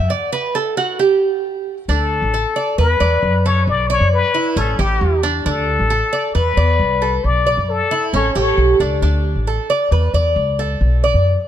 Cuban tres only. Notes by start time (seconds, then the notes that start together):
0.10 D5
0.32 B4
0.55 A4
0.77 F#4
0.99 G4
1.89 D4
2.34 A4
2.56 D5
2.78 B4
3.00 D5
3.46 A4
3.90 D5
4.34 E4
4.57 C#4
4.79 G4
5.23 D4
5.46 D4
5.90 A4
6.13 D5
6.35 B4
6.57 D5
7.02 A4
7.47 D5
7.91 E4
8.14 C#4
8.35 G4
8.80 D4
9.02 D4
9.47 A4
9.70 D5
9.92 B4
10.14 D5
10.59 A4
11.04 D5